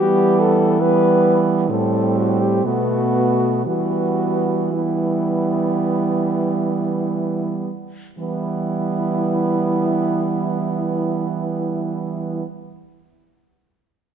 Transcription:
0, 0, Header, 1, 5, 480
1, 0, Start_track
1, 0, Key_signature, 1, "minor"
1, 0, Tempo, 810811
1, 475, Tempo, 892857
1, 955, Tempo, 946372
1, 1435, Tempo, 1015228
1, 1915, Tempo, 1092896
1, 1916, Time_signature, 4, 2, 24, 8
1, 2875, Tempo, 1158301
1, 4315, Tempo, 1096892
1, 6427, End_track
2, 0, Start_track
2, 0, Title_t, "French horn"
2, 0, Program_c, 0, 60
2, 0, Note_on_c, 0, 67, 95
2, 236, Note_on_c, 0, 69, 82
2, 245, Note_off_c, 0, 67, 0
2, 477, Note_on_c, 0, 71, 86
2, 485, Note_off_c, 0, 69, 0
2, 796, Note_off_c, 0, 71, 0
2, 959, Note_on_c, 0, 69, 69
2, 1196, Note_on_c, 0, 66, 60
2, 1204, Note_off_c, 0, 69, 0
2, 1320, Note_on_c, 0, 67, 65
2, 1327, Note_off_c, 0, 66, 0
2, 1439, Note_on_c, 0, 66, 67
2, 1447, Note_off_c, 0, 67, 0
2, 1909, Note_off_c, 0, 66, 0
2, 1912, Note_on_c, 0, 66, 63
2, 2390, Note_on_c, 0, 64, 46
2, 2397, Note_off_c, 0, 66, 0
2, 3600, Note_off_c, 0, 64, 0
2, 3844, Note_on_c, 0, 64, 57
2, 5676, Note_off_c, 0, 64, 0
2, 6427, End_track
3, 0, Start_track
3, 0, Title_t, "French horn"
3, 0, Program_c, 1, 60
3, 0, Note_on_c, 1, 59, 62
3, 453, Note_off_c, 1, 59, 0
3, 481, Note_on_c, 1, 59, 57
3, 949, Note_off_c, 1, 59, 0
3, 954, Note_on_c, 1, 60, 51
3, 1440, Note_on_c, 1, 59, 47
3, 1447, Note_off_c, 1, 60, 0
3, 1911, Note_off_c, 1, 59, 0
3, 1914, Note_on_c, 1, 59, 41
3, 2377, Note_off_c, 1, 59, 0
3, 2387, Note_on_c, 1, 59, 42
3, 3646, Note_off_c, 1, 59, 0
3, 3850, Note_on_c, 1, 59, 50
3, 5683, Note_off_c, 1, 59, 0
3, 6427, End_track
4, 0, Start_track
4, 0, Title_t, "French horn"
4, 0, Program_c, 2, 60
4, 0, Note_on_c, 2, 55, 56
4, 454, Note_off_c, 2, 55, 0
4, 477, Note_on_c, 2, 55, 60
4, 946, Note_off_c, 2, 55, 0
4, 956, Note_on_c, 2, 55, 53
4, 1435, Note_on_c, 2, 57, 50
4, 1442, Note_off_c, 2, 55, 0
4, 1914, Note_off_c, 2, 57, 0
4, 1917, Note_on_c, 2, 55, 38
4, 2379, Note_off_c, 2, 55, 0
4, 2385, Note_on_c, 2, 55, 45
4, 3645, Note_off_c, 2, 55, 0
4, 3843, Note_on_c, 2, 55, 43
4, 5675, Note_off_c, 2, 55, 0
4, 6427, End_track
5, 0, Start_track
5, 0, Title_t, "French horn"
5, 0, Program_c, 3, 60
5, 0, Note_on_c, 3, 52, 65
5, 957, Note_on_c, 3, 45, 54
5, 965, Note_off_c, 3, 52, 0
5, 1433, Note_off_c, 3, 45, 0
5, 1436, Note_on_c, 3, 47, 51
5, 1917, Note_on_c, 3, 52, 42
5, 1924, Note_off_c, 3, 47, 0
5, 3663, Note_off_c, 3, 52, 0
5, 3847, Note_on_c, 3, 52, 45
5, 5679, Note_off_c, 3, 52, 0
5, 6427, End_track
0, 0, End_of_file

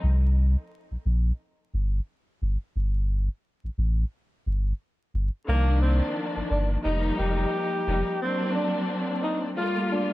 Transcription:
0, 0, Header, 1, 4, 480
1, 0, Start_track
1, 0, Tempo, 681818
1, 20, Time_signature, 4, 2, 24, 8
1, 7132, End_track
2, 0, Start_track
2, 0, Title_t, "Tenor saxophone"
2, 0, Program_c, 0, 66
2, 3864, Note_on_c, 0, 58, 117
2, 4078, Note_off_c, 0, 58, 0
2, 4092, Note_on_c, 0, 60, 83
2, 4312, Note_off_c, 0, 60, 0
2, 4575, Note_on_c, 0, 62, 81
2, 4701, Note_off_c, 0, 62, 0
2, 4812, Note_on_c, 0, 63, 94
2, 5031, Note_off_c, 0, 63, 0
2, 5058, Note_on_c, 0, 67, 94
2, 5751, Note_off_c, 0, 67, 0
2, 5782, Note_on_c, 0, 60, 103
2, 5997, Note_off_c, 0, 60, 0
2, 6017, Note_on_c, 0, 62, 87
2, 6234, Note_off_c, 0, 62, 0
2, 6494, Note_on_c, 0, 63, 89
2, 6621, Note_off_c, 0, 63, 0
2, 6738, Note_on_c, 0, 65, 85
2, 6955, Note_off_c, 0, 65, 0
2, 6982, Note_on_c, 0, 62, 87
2, 7132, Note_off_c, 0, 62, 0
2, 7132, End_track
3, 0, Start_track
3, 0, Title_t, "String section"
3, 0, Program_c, 1, 48
3, 3849, Note_on_c, 1, 51, 105
3, 3853, Note_on_c, 1, 53, 97
3, 3859, Note_on_c, 1, 58, 94
3, 3863, Note_on_c, 1, 62, 118
3, 4749, Note_off_c, 1, 51, 0
3, 4751, Note_off_c, 1, 53, 0
3, 4754, Note_off_c, 1, 58, 0
3, 4756, Note_off_c, 1, 62, 0
3, 4808, Note_on_c, 1, 53, 103
3, 4814, Note_on_c, 1, 55, 88
3, 4819, Note_on_c, 1, 58, 97
3, 4823, Note_on_c, 1, 63, 112
3, 5485, Note_off_c, 1, 53, 0
3, 5488, Note_off_c, 1, 55, 0
3, 5490, Note_off_c, 1, 58, 0
3, 5492, Note_off_c, 1, 63, 0
3, 5530, Note_on_c, 1, 53, 81
3, 5536, Note_on_c, 1, 55, 78
3, 5540, Note_on_c, 1, 58, 76
3, 5545, Note_on_c, 1, 63, 88
3, 5759, Note_off_c, 1, 53, 0
3, 5761, Note_off_c, 1, 55, 0
3, 5764, Note_off_c, 1, 58, 0
3, 5766, Note_off_c, 1, 63, 0
3, 5780, Note_on_c, 1, 54, 106
3, 5785, Note_on_c, 1, 58, 97
3, 5790, Note_on_c, 1, 60, 101
3, 5795, Note_on_c, 1, 62, 120
3, 6675, Note_off_c, 1, 54, 0
3, 6677, Note_off_c, 1, 58, 0
3, 6680, Note_off_c, 1, 60, 0
3, 6682, Note_off_c, 1, 62, 0
3, 6725, Note_on_c, 1, 55, 98
3, 6731, Note_on_c, 1, 57, 91
3, 6736, Note_on_c, 1, 58, 95
3, 6741, Note_on_c, 1, 65, 114
3, 7132, Note_off_c, 1, 55, 0
3, 7132, Note_off_c, 1, 57, 0
3, 7132, Note_off_c, 1, 58, 0
3, 7132, Note_off_c, 1, 65, 0
3, 7132, End_track
4, 0, Start_track
4, 0, Title_t, "Sub bass"
4, 0, Program_c, 2, 38
4, 23, Note_on_c, 2, 36, 115
4, 393, Note_off_c, 2, 36, 0
4, 641, Note_on_c, 2, 34, 47
4, 681, Note_off_c, 2, 34, 0
4, 743, Note_on_c, 2, 34, 95
4, 927, Note_off_c, 2, 34, 0
4, 1223, Note_on_c, 2, 31, 99
4, 1407, Note_off_c, 2, 31, 0
4, 1702, Note_on_c, 2, 31, 98
4, 1808, Note_off_c, 2, 31, 0
4, 1941, Note_on_c, 2, 31, 110
4, 2312, Note_off_c, 2, 31, 0
4, 2561, Note_on_c, 2, 33, 49
4, 2601, Note_off_c, 2, 33, 0
4, 2660, Note_on_c, 2, 33, 100
4, 2846, Note_off_c, 2, 33, 0
4, 3142, Note_on_c, 2, 31, 95
4, 3327, Note_off_c, 2, 31, 0
4, 3620, Note_on_c, 2, 31, 94
4, 3727, Note_off_c, 2, 31, 0
4, 3860, Note_on_c, 2, 36, 104
4, 4231, Note_off_c, 2, 36, 0
4, 4480, Note_on_c, 2, 31, 49
4, 4520, Note_off_c, 2, 31, 0
4, 4581, Note_on_c, 2, 31, 89
4, 4766, Note_off_c, 2, 31, 0
4, 4821, Note_on_c, 2, 29, 108
4, 5006, Note_off_c, 2, 29, 0
4, 5061, Note_on_c, 2, 29, 97
4, 5246, Note_off_c, 2, 29, 0
4, 5542, Note_on_c, 2, 29, 96
4, 5648, Note_off_c, 2, 29, 0
4, 7132, End_track
0, 0, End_of_file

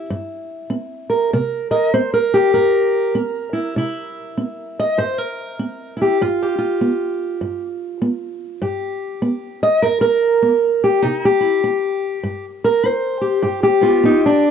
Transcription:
0, 0, Header, 1, 2, 480
1, 0, Start_track
1, 0, Tempo, 608519
1, 1038, Time_signature, 4, 2, 24, 8
1, 6794, Tempo, 601805
1, 11495, End_track
2, 0, Start_track
2, 0, Title_t, "Steel-string acoustic guitar"
2, 0, Program_c, 0, 25
2, 0, Note_on_c, 0, 64, 40
2, 81, Note_on_c, 0, 43, 59
2, 522, Note_off_c, 0, 43, 0
2, 551, Note_on_c, 0, 60, 50
2, 864, Note_on_c, 0, 70, 47
2, 998, Note_off_c, 0, 60, 0
2, 1051, Note_on_c, 0, 48, 68
2, 1052, Note_off_c, 0, 70, 0
2, 1055, Note_on_c, 0, 70, 44
2, 1079, Note_off_c, 0, 64, 0
2, 1345, Note_off_c, 0, 70, 0
2, 1348, Note_on_c, 0, 70, 47
2, 1349, Note_on_c, 0, 75, 78
2, 1488, Note_off_c, 0, 48, 0
2, 1513, Note_off_c, 0, 75, 0
2, 1525, Note_off_c, 0, 70, 0
2, 1527, Note_on_c, 0, 60, 57
2, 1528, Note_on_c, 0, 72, 72
2, 1681, Note_off_c, 0, 72, 0
2, 1685, Note_on_c, 0, 70, 75
2, 1844, Note_on_c, 0, 67, 75
2, 1967, Note_off_c, 0, 60, 0
2, 1992, Note_off_c, 0, 70, 0
2, 2002, Note_on_c, 0, 70, 77
2, 2010, Note_on_c, 0, 43, 63
2, 2449, Note_off_c, 0, 43, 0
2, 2484, Note_off_c, 0, 67, 0
2, 2484, Note_on_c, 0, 60, 56
2, 2785, Note_on_c, 0, 64, 44
2, 2926, Note_off_c, 0, 60, 0
2, 2945, Note_off_c, 0, 64, 0
2, 2967, Note_on_c, 0, 48, 67
2, 2979, Note_on_c, 0, 64, 49
2, 3408, Note_off_c, 0, 48, 0
2, 3451, Note_on_c, 0, 60, 56
2, 3782, Note_on_c, 0, 75, 82
2, 3890, Note_off_c, 0, 60, 0
2, 3924, Note_off_c, 0, 70, 0
2, 3926, Note_on_c, 0, 43, 54
2, 3931, Note_on_c, 0, 72, 87
2, 3933, Note_off_c, 0, 75, 0
2, 4087, Note_off_c, 0, 72, 0
2, 4087, Note_on_c, 0, 70, 75
2, 4368, Note_off_c, 0, 43, 0
2, 4412, Note_on_c, 0, 60, 48
2, 4697, Note_off_c, 0, 64, 0
2, 4707, Note_on_c, 0, 64, 41
2, 4745, Note_on_c, 0, 67, 64
2, 4850, Note_off_c, 0, 60, 0
2, 4866, Note_off_c, 0, 64, 0
2, 4885, Note_off_c, 0, 70, 0
2, 4894, Note_off_c, 0, 67, 0
2, 4901, Note_on_c, 0, 43, 70
2, 4905, Note_on_c, 0, 65, 64
2, 5068, Note_on_c, 0, 67, 98
2, 5185, Note_off_c, 0, 65, 0
2, 5194, Note_on_c, 0, 65, 44
2, 5334, Note_off_c, 0, 43, 0
2, 5372, Note_on_c, 0, 59, 54
2, 5808, Note_off_c, 0, 59, 0
2, 5845, Note_on_c, 0, 43, 58
2, 6013, Note_off_c, 0, 67, 0
2, 6284, Note_off_c, 0, 43, 0
2, 6323, Note_on_c, 0, 59, 52
2, 6761, Note_off_c, 0, 59, 0
2, 6784, Note_off_c, 0, 65, 0
2, 6796, Note_on_c, 0, 43, 73
2, 6801, Note_on_c, 0, 67, 45
2, 7241, Note_off_c, 0, 43, 0
2, 7277, Note_on_c, 0, 59, 59
2, 7601, Note_off_c, 0, 67, 0
2, 7604, Note_on_c, 0, 75, 92
2, 7722, Note_off_c, 0, 59, 0
2, 7759, Note_on_c, 0, 70, 78
2, 7762, Note_off_c, 0, 75, 0
2, 7767, Note_on_c, 0, 43, 61
2, 7899, Note_off_c, 0, 70, 0
2, 7908, Note_on_c, 0, 70, 88
2, 8208, Note_off_c, 0, 43, 0
2, 8238, Note_on_c, 0, 59, 51
2, 8556, Note_off_c, 0, 70, 0
2, 8568, Note_on_c, 0, 67, 71
2, 8684, Note_off_c, 0, 59, 0
2, 8717, Note_on_c, 0, 63, 77
2, 8726, Note_off_c, 0, 67, 0
2, 8727, Note_on_c, 0, 48, 67
2, 8880, Note_off_c, 0, 63, 0
2, 8898, Note_on_c, 0, 67, 80
2, 9021, Note_on_c, 0, 64, 44
2, 9168, Note_off_c, 0, 48, 0
2, 9196, Note_off_c, 0, 64, 0
2, 9206, Note_on_c, 0, 64, 60
2, 9647, Note_off_c, 0, 64, 0
2, 9682, Note_on_c, 0, 43, 59
2, 9851, Note_off_c, 0, 67, 0
2, 10009, Note_on_c, 0, 70, 85
2, 10125, Note_off_c, 0, 43, 0
2, 10161, Note_on_c, 0, 64, 55
2, 10179, Note_off_c, 0, 70, 0
2, 10179, Note_on_c, 0, 72, 75
2, 10464, Note_on_c, 0, 67, 45
2, 10603, Note_off_c, 0, 64, 0
2, 10631, Note_on_c, 0, 43, 66
2, 10636, Note_off_c, 0, 67, 0
2, 10636, Note_on_c, 0, 67, 42
2, 10788, Note_off_c, 0, 67, 0
2, 10797, Note_on_c, 0, 67, 79
2, 10809, Note_off_c, 0, 72, 0
2, 10941, Note_on_c, 0, 59, 46
2, 10953, Note_on_c, 0, 65, 81
2, 11077, Note_off_c, 0, 43, 0
2, 11109, Note_off_c, 0, 59, 0
2, 11119, Note_on_c, 0, 59, 55
2, 11133, Note_on_c, 0, 63, 71
2, 11275, Note_off_c, 0, 65, 0
2, 11286, Note_off_c, 0, 63, 0
2, 11296, Note_on_c, 0, 62, 79
2, 11437, Note_off_c, 0, 67, 0
2, 11495, Note_off_c, 0, 59, 0
2, 11495, Note_off_c, 0, 62, 0
2, 11495, End_track
0, 0, End_of_file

